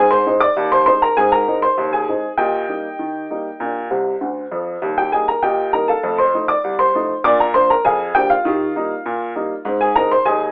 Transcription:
0.00 0.22 G#2 medium
0.00 0.14 C4 medium
0.00 0.11 G#4 medium
0.00 0.11 G#5 loud
0.10 0.39 C5 medium
0.10 0.39 C6 loud
0.26 0.42 G#3 medium
0.26 0.43 C4 medium
0.26 0.43 D#4 medium
0.40 0.70 D5 medium
0.40 0.70 D6 loud
0.57 0.82 D#2 medium
0.72 0.86 C5 medium
0.72 0.85 C6 loud
0.86 1.03 G#3 medium
0.86 1.04 C4 medium
0.86 1.04 D#4 medium
0.86 1.01 C5 medium
0.86 1.02 C6 loud
1.02 1.17 A#4 medium
1.02 1.17 A#5 medium
1.17 1.43 G#2 medium
1.17 1.35 C4 medium
1.17 1.32 G#4 medium
1.17 1.32 G#5 loud
1.32 1.61 A#4 medium
1.32 1.56 A#5 medium
1.47 1.64 G#3 medium
1.47 1.64 C4 soft
1.47 1.64 D#4 medium
1.62 1.91 C5 medium
1.62 1.86 C6 medium
1.77 2.03 D#2 medium
1.93 2.36 G#4 medium
1.93 2.29 G#5 medium
2.08 2.25 G#3 soft
2.08 2.25 C4 soft
2.08 2.25 D#4 medium
2.38 2.64 A#2 medium
2.38 4.18 G4 medium
2.38 4.17 D#5 medium
2.38 3.84 G5 medium
2.69 2.86 G3 soft
2.69 2.86 A#3 soft
2.69 2.86 D#4 soft
2.99 3.25 D#3 medium
3.30 3.47 G3 soft
3.30 3.47 A#3 soft
3.30 3.47 D#4 soft
3.60 3.86 A#2 medium
3.60 3.78 D4 soft
3.90 4.13 C2 medium
3.90 4.14 C3 medium
4.21 4.44 D2 medium
4.21 4.44 D3 medium
4.51 4.74 F2 medium
4.51 4.74 F3 medium
4.82 5.08 D#2 medium
4.82 5.00 G3 soft
4.98 5.12 G4 medium
4.98 5.13 G5 medium
5.12 5.29 G3 soft
5.12 5.29 A#3 soft
5.12 5.30 D#4 medium
5.12 5.27 G#4 medium
5.12 5.28 G#5 medium
5.28 5.43 A#4 medium
5.28 5.43 A#5 medium
5.42 5.69 A#2 medium
5.42 5.71 G4 medium
5.42 5.72 D#5 medium
5.42 5.71 G5 medium
5.73 5.90 G3 soft
5.73 5.90 A#3 soft
5.73 5.91 D#4 medium
5.73 5.88 A#4 medium
5.73 5.88 A#5 medium
5.88 6.17 A4 medium
5.88 6.17 F5 medium
5.88 6.17 A5 medium
6.03 6.29 F2 medium
6.03 6.21 A3 medium
6.18 6.47 C5 medium
6.18 6.43 C6 medium
6.34 6.50 F3 soft
6.34 6.51 A3 soft
6.34 6.51 D#4 medium
6.48 6.77 D5 medium
6.48 6.73 D6 medium
6.64 6.90 C2 medium
6.79 7.22 C5 medium
6.79 7.15 C6 medium
6.95 7.11 F3 soft
6.95 7.11 A3 medium
6.95 7.12 D#4 medium
7.24 7.50 A#2 medium
7.24 7.43 D4 medium
7.24 7.39 D5 medium
7.24 7.40 D6 loud
7.40 7.55 A#4 medium
7.40 7.55 A#5 medium
7.54 7.71 F3 medium
7.54 7.72 A#3 soft
7.54 7.72 D4 medium
7.54 7.69 C5 medium
7.54 7.70 C6 loud
7.70 7.85 A#4 medium
7.70 7.85 A#5 medium
7.85 8.11 F2 medium
7.85 8.14 G#4 medium
7.85 8.14 F5 medium
7.85 8.14 G#5 medium
8.15 8.32 F3 medium
8.15 8.32 A#3 medium
8.15 8.32 D4 medium
8.15 8.30 G4 medium
8.15 8.30 G5 loud
8.30 9.62 F4 medium
8.30 9.61 F5 medium
8.45 8.71 D#3 loud
8.45 8.63 G4 medium
8.76 8.92 G3 medium
8.76 8.92 A#3 medium
8.76 8.93 D#4 medium
9.06 9.31 A#2 medium
9.36 9.52 G3 medium
9.36 9.52 A#3 medium
9.36 9.53 D#4 medium
9.65 9.91 G#2 loud
9.65 9.84 C4 medium
9.81 9.95 G#4 medium
9.81 9.96 G#5 medium
9.96 10.12 G#3 medium
9.96 10.13 C4 medium
9.96 10.13 D#4 medium
9.96 10.10 A#4 medium
9.96 10.11 A#5 loud
10.12 10.26 C5 medium
10.12 10.26 C6 medium
10.26 10.52 D#2 medium
10.26 10.52 G#4 medium
10.26 10.52 D#5 medium
10.26 10.50 G#5 medium

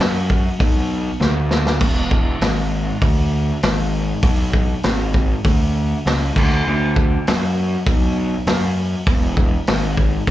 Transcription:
0.00 0.48 F#2 medium
0.00 snare loud
0.00 open hi-hat medium
0.30 kick medium
0.60 1.08 B1 medium
0.60 kick loud
0.60 open hi-hat medium
1.20 1.82 D2 loud
1.20 snare medium
1.51 snare loud
1.67 snare loud
1.81 2.29 E1 loud
1.81 kick loud
1.81 crash loud
2.11 kick medium
2.41 2.90 G#1 medium
2.41 snare loud
2.41 open hi-hat medium
3.02 3.51 D2 medium
3.02 kick loud
3.02 open hi-hat medium
3.63 4.11 G#1 loud
3.63 snare loud
3.63 open hi-hat medium
4.23 4.72 B1 loud
4.23 kick loud
4.23 open hi-hat medium
4.53 kick medium
4.83 5.33 G#1 loud
4.83 snare loud
4.83 open hi-hat medium
5.14 kick medium
5.45 5.93 D2 medium
5.45 kick loud
5.45 open hi-hat medium
6.06 6.30 C#2 loud
6.06 snare loud
6.06 open hi-hat medium
6.36 6.60 D2 loud
6.36 kick loud
6.36 crash loud
6.67 7.15 D2 loud
6.96 kick loud
7.27 7.76 F#2 loud
7.27 snare loud
7.27 open hi-hat medium
7.86 8.34 B1 medium
7.86 kick loud
7.86 open hi-hat medium
8.47 8.95 F#2 loud
8.47 snare loud
8.47 open hi-hat medium
9.07 9.54 E1 loud
9.07 kick loud
9.07 open hi-hat medium
9.37 kick medium
9.67 10.16 G#1 medium
9.67 snare loud
9.67 open hi-hat medium
9.97 kick medium
10.27 kick loud
10.27 open hi-hat medium

